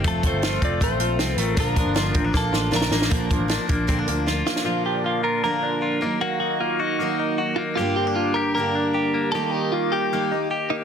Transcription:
0.04 steel-string acoustic guitar F3 C4 F4 A4, clean electric guitar A3 F4 A4, kick, closed hi-hat
0.22 clean electric guitar C4, steel-string acoustic guitar C4 F4 A4, kick, closed hi-hat
0.26 clean electric guitar C5
0.32 picked electric bass G1
0.42 steel-string acoustic guitar F3 C4 F4 A4, clean electric guitar F4, snare, closed hi-hat
0.62 picked electric bass F1, clean electric guitar C4 D5, steel-string acoustic guitar C4 F4 A4, kick, closed hi-hat
0.80 picked electric bass A1, steel-string acoustic guitar F3 C4 F4 A4, clean electric guitar A3 C5, kick, closed hi-hat
0.99 picked electric bass A#1, steel-string acoustic guitar C4 F4 A4, clean electric guitar F4, closed hi-hat
1.18 picked electric bass C2, steel-string acoustic guitar F3 C4 F4 A4, clean electric guitar C4, snare, closed hi-hat
1.37 picked electric bass A1, clean electric guitar A3 A#4, steel-string acoustic guitar C4 F4 A4, closed hi-hat
1.57 picked electric bass A#1, steel-string acoustic guitar A#2 D3 F3 A#3 D4 A#4, clean electric guitar F3 F4 A#4, kick, closed hi-hat
1.76 steel-string acoustic guitar F3 A#3 D4 A#4, clean electric guitar D4, kick, closed hi-hat
1.85 picked electric bass G1
1.95 steel-string acoustic guitar A#2 D3 F3 A#3 D4 A#4, clean electric guitar F4, snare, closed hi-hat
2.14 picked electric bass A1, steel-string acoustic guitar F3 A#3 D4 A#4, clean electric guitar C4, kick, closed hi-hat
2.24 clean electric guitar D4
2.33 picked electric bass A#1, steel-string acoustic guitar F3 A#3 D4 A#4, clean electric guitar A#3 A4, kick, snare
2.51 picked electric bass A1, steel-string acoustic guitar F3 A#3 D4 A#4, clean electric guitar F4, snare
2.71 picked electric bass A#1, steel-string acoustic guitar A#2 D3 F3 A#3 D4 A#4, clean electric guitar D4, snare
2.76 clean electric guitar A#4
2.81 snare
2.91 picked electric bass A1, steel-string acoustic guitar F3 A#3 D4 A#4, clean electric guitar A#3, snare
3.02 snare
3.10 picked electric bass A#1, steel-string acoustic guitar A#2 D3 F3 A#3 D4 A#4, clean electric guitar F3, kick, closed hi-hat
3.29 steel-string acoustic guitar F3 A#3 D4 A#4, clean electric guitar A#3, kick, closed hi-hat
3.39 picked electric bass A1
3.48 steel-string acoustic guitar F3 A#3 D4 A#4, clean electric guitar D4, snare, closed hi-hat
3.67 picked electric bass A#1, steel-string acoustic guitar F3 A#3 D4 A#4, clean electric guitar A#3, kick, closed hi-hat
3.87 picked electric bass A#1, steel-string acoustic guitar A#2 D3 F3 A#3 D4 A#4, clean electric guitar C4, kick, closed hi-hat
3.99 clean electric guitar D4
4.07 picked electric bass D2, steel-string acoustic guitar F3 A#3 D4 A#4, clean electric guitar A#3, closed hi-hat
4.26 steel-string acoustic guitar F3 A#3 D4 A#4, clean electric guitar F4, snare
4.46 steel-string acoustic guitar F3 A#3 D4 A#4, clean electric guitar A#3 F4, snare
4.56 snare
4.64 steel-string acoustic guitar A#2 D3 F3 A#3 D4 A#4, clean electric guitar F3 F4
4.85 clean electric guitar D4 G4
5.04 clean electric guitar A#3 F4
5.23 clean electric guitar F4 A#4
5.44 steel-string acoustic guitar A#2 D3 F3 A#3 D4 A#4, clean electric guitar A#3 A#4
5.63 clean electric guitar D4
5.82 clean electric guitar F4
6.01 steel-string acoustic guitar D#3 F#3 A#3 D#4 A#4, clean electric guitar A#3
6.21 clean electric guitar A#3 F#4
6.40 clean electric guitar D#4 F#4
6.60 clean electric guitar A#3 F4
6.80 clean electric guitar D#4 F#4
6.99 steel-string acoustic guitar D#3 F#3 A#3 D#4 A#4, clean electric guitar A#3
7.19 clean electric guitar D#4
7.38 clean electric guitar F#4
7.56 clean electric guitar A#3 F4
7.75 steel-string acoustic guitar G2 D3 G3 D4, clean electric guitar A#3 F4 G4
7.80 steel-string acoustic guitar A#3 G4
7.96 clean electric guitar C4 G4
8.07 clean electric guitar D4
8.16 clean electric guitar A#3 F4
8.34 clean electric guitar G4 A#4
8.55 steel-string acoustic guitar G2 D3 G3 A#3, clean electric guitar A#3 A#4
8.59 steel-string acoustic guitar D4 G4
8.75 clean electric guitar D4
8.94 clean electric guitar G4
9.14 clean electric guitar A#3
9.32 steel-string acoustic guitar D#3 G3, clean electric guitar D#3 G4 A4
9.36 steel-string acoustic guitar A#3 D#4 G4
9.51 clean electric guitar D#4 G4
9.72 clean electric guitar A#3 F4
9.92 clean electric guitar G4
10.13 steel-string acoustic guitar D#3 G3 A#3 D#4 G4, clean electric guitar A#3
10.32 steel-string acoustic guitar A#3 D#4 G4, clean electric guitar D#4
10.51 clean electric guitar G4
10.70 clean electric guitar A#3 D#4

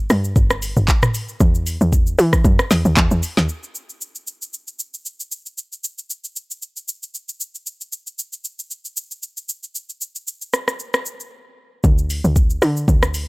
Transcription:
0.10 log drum bass G2, cross-stick, open hi-hat, shaker
0.24 shaker
0.36 log drum bass G1, kick, shaker
0.50 cross-stick, shaker
0.62 open hi-hat, shaker
0.77 log drum bass G1, shaker
0.88 kick, clap, shaker
1.03 cross-stick, mid tom, shaker
1.14 open hi-hat, shaker
1.29 shaker
1.40 log drum bass E2, kick, shaker
1.55 shaker
1.66 open hi-hat, shaker
1.81 log drum bass E2, shaker
1.93 kick, shaker
2.07 shaker
2.19 log drum bass E3, open hi-hat, shaker
2.33 kick, cross-stick, shaker
2.45 log drum bass F#2, kick, shaker
2.59 cross-stick, shaker
2.71 log drum bass E2, snare, open hi-hat, shaker
2.85 log drum bass D#2, shaker
2.97 log drum bass E2, kick, clap, shaker
3.11 log drum bass E2, shaker
3.23 open hi-hat, shaker
3.37 log drum bass D#2, snare, shaker
3.49 shaker
3.63 shaker
3.75 shaker
3.90 shaker
4.01 shaker
4.15 shaker
4.27 shaker
4.42 shaker
4.53 shaker
4.68 shaker
4.79 shaker
4.94 shaker
5.06 shaker
5.20 shaker
5.32 shaker
5.46 shaker
5.58 shaker
5.72 shaker
5.84 shaker
5.98 shaker
6.10 shaker
6.24 shaker
6.36 shaker
6.51 shaker
6.62 shaker
6.77 shaker
6.88 shaker
7.03 shaker
7.15 shaker
7.29 shaker
7.40 shaker
7.55 shaker
7.67 shaker
7.81 shaker
7.93 shaker
8.07 shaker
8.19 shaker
8.33 shaker
8.45 shaker
8.59 shaker
8.71 shaker
8.85 shaker
8.97 shaker
9.11 shaker
9.23 shaker
9.37 shaker
9.49 shaker
9.63 shaker
9.75 shaker
9.90 shaker
10.01 shaker
10.16 shaker
10.27 shaker
10.42 shaker
10.53 cross-stick, shaker
10.68 cross-stick, shaker
10.80 shaker
10.94 cross-stick, shaker
11.06 shaker
11.20 shaker
11.84 log drum bass D2, kick, shaker
11.98 shaker
12.10 open hi-hat, shaker
12.24 log drum bass D2, shaker
12.36 kick, shaker
12.50 shaker
12.62 log drum bass D3, cross-stick, open hi-hat, shaker
12.77 shaker
12.88 log drum bass D2, kick, shaker
13.03 cross-stick, shaker
13.14 open hi-hat, shaker

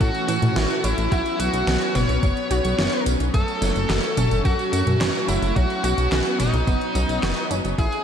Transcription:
Already playing: analog synth pad E3 A3 C#4
0.01 analog synth bass A2, synth arpeggio sound A3, lead electric guitar F#4, kick, closed hi-hat, tambourine
0.15 closed hi-hat, tambourine
0.28 analog synth bass A2, synth arpeggio sound E3, lead electric guitar F#4, closed hi-hat, tambourine
0.42 analog synth bass A2, closed hi-hat, mid tom, tambourine
0.56 analog synth bass A1, synth arpeggio sound E4, snare, closed hi-hat, tambourine
0.70 closed hi-hat, tambourine
0.84 analog synth bass A1, synth arpeggio sound C#4, lead electric guitar E4, closed hi-hat, tambourine
0.98 analog synth bass A1, closed hi-hat, tambourine
1.12 analog synth bass B1, analog synth pad F#3 B3, lead electric guitar E4, synth arpeggio sound F#4, kick, closed hi-hat, tambourine
1.26 closed hi-hat, tambourine
1.40 analog synth bass B1, lead electric guitar F#4, closed hi-hat, tambourine
1.53 analog synth bass B1, closed hi-hat, tambourine
1.67 analog synth bass B1, synth arpeggio sound C#4, snare, closed hi-hat, tambourine
1.81 closed hi-hat, tambourine
1.95 analog synth bass F#1, synth arpeggio sound B3, lead electric guitar C#5, snare, closed hi-hat, mid tom, tambourine
2.09 analog synth bass B1, closed hi-hat, tambourine
2.23 analog synth bass F#1, synth arpeggio sound F#3, kick, closed hi-hat, tambourine
2.37 closed hi-hat, tambourine
2.51 analog synth bass B1, synth arpeggio sound F#4, closed hi-hat, tambourine
2.65 analog synth bass B1, closed hi-hat, tambourine
2.78 analog synth bass F#1, synth arpeggio sound C#4, snare, closed hi-hat, tambourine
2.92 closed hi-hat, tambourine
3.06 analog synth bass B1, closed hi-hat, tambourine
3.20 analog synth bass B1, closed hi-hat, tambourine
3.34 analog synth bass F#1, analog synth pad F#3 A3, synth arpeggio sound A3, lead electric guitar A4, kick, closed hi-hat, tambourine
3.48 closed hi-hat, tambourine
3.62 analog synth bass F#1, synth arpeggio sound F#3, snare, closed hi-hat, tambourine
3.76 analog synth bass F#1, closed hi-hat, tambourine
3.90 analog synth bass F#1, synth arpeggio sound F#4, snare, clap, closed hi-hat, tambourine
4.04 closed hi-hat, tambourine
4.17 analog synth bass F#1, synth arpeggio sound C#4, closed hi-hat, mid tom, tambourine
4.31 analog synth bass F#1, closed hi-hat, tambourine
4.45 analog synth bass F#2, synth arpeggio sound F#4, lead electric guitar F#4, kick, closed hi-hat, tambourine
4.59 closed hi-hat, tambourine
4.73 analog synth bass F#2, lead electric guitar F#4, closed hi-hat, tambourine
4.87 analog synth bass F#2, closed hi-hat, mid tom, tambourine
5.01 analog synth bass F#1, synth arpeggio sound C#4, snare, clap, closed hi-hat, tambourine
5.15 closed hi-hat, tambourine
5.28 analog synth bass F#1, synth arpeggio sound F#3, lead electric guitar E4, closed hi-hat, tambourine
5.42 analog synth bass F#1, closed hi-hat, tambourine
5.56 analog synth bass B1, synth arpeggio sound F#3, analog synth pad B3, lead electric guitar F#4, kick, closed hi-hat, tambourine
5.70 closed hi-hat, tambourine
5.84 analog synth bass B1, synth arpeggio sound F#4, lead electric guitar F#4, closed hi-hat, tambourine
5.98 analog synth bass B1, closed hi-hat, tambourine
6.12 analog synth bass B1, synth arpeggio sound C#4, snare, clap, closed hi-hat, tambourine
6.26 closed hi-hat, tambourine
6.40 analog synth bass F#1, lead electric guitar D#4, snare, closed hi-hat, mid tom, tambourine
6.53 analog synth bass B1, closed hi-hat, tambourine
6.67 analog synth bass F#1, synth arpeggio sound B3, kick, closed hi-hat, tambourine
6.81 closed hi-hat, tambourine
6.95 analog synth bass B1, synth arpeggio sound F#3, closed hi-hat, tambourine
7.09 analog synth bass B1, closed hi-hat, tambourine
7.23 analog synth bass F#1, synth arpeggio sound F#4, snare, clap, closed hi-hat, tambourine
7.37 closed hi-hat, tambourine
7.51 analog synth bass F#1, synth arpeggio sound C#4, closed hi-hat, tambourine
7.64 analog synth bass F#1, closed hi-hat, tambourine
7.78 analog synth bass A1, analog synth pad E3 A3 C#4, synth arpeggio sound E4, lead electric guitar G#4, kick, closed hi-hat, tambourine
7.92 closed hi-hat, tambourine

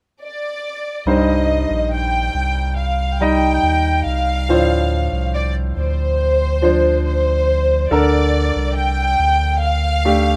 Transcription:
0.23 violin section D5
1.06 sub bass C2, grand piano G2 G3 D#4 C5, violin section D#5
1.70 sub bass A#1
1.94 violin section G5
2.34 sub bass C2
2.78 violin section F5
3.21 grand piano G3 D#4 D#5, violin section G5
3.63 sub bass D#2
4.06 sub bass C2, violin section F5
4.48 sub bass D2, grand piano A2 F3 D4 C5
5.12 sub bass C2
5.35 violin section D5
5.77 sub bass D2, violin section C5
6.62 grand piano F3 D4 C5
7.06 violin section C5
7.91 sub bass D2, grand piano D3 D4 A4 A#4, violin section D5
8.56 sub bass C2
8.77 violin section G5
9.19 sub bass D2
9.63 violin section F5
10.05 grand piano A3 D4 G4

